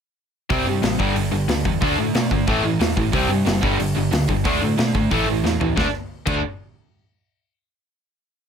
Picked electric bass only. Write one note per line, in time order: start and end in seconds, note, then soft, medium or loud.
0.50 0.63 C2 medium
0.65 0.79 G2 medium
0.82 0.95 A1 medium
1.00 1.12 G1 medium
1.16 1.29 G1 medium
1.32 1.45 G1 medium
1.48 1.61 D2 medium
1.65 1.78 E2 medium
1.82 1.95 D2 loud
1.97 2.11 A2 medium
2.15 2.27 B2 loud
2.31 2.44 G1 medium
2.48 2.61 A1 medium
2.63 2.76 A1 medium
2.80 2.93 E2 medium
2.97 3.10 A1 medium
3.13 3.26 C2 loud
3.28 3.42 G2 medium
3.46 3.59 F#1 loud
3.63 3.76 G1 medium
3.80 3.92 G1 medium
3.96 4.09 G1 medium
4.12 4.25 D2 medium
4.29 4.41 G1 medium
4.45 4.58 D2 medium
4.62 4.75 A2 medium
4.79 4.91 B2 medium
4.95 5.08 G#1 medium
5.11 5.24 A1 medium
5.27 5.40 A1 medium
5.44 5.57 E2 medium
5.60 5.73 E2 medium
5.77 5.86 D2 loud
6.27 6.42 D2 medium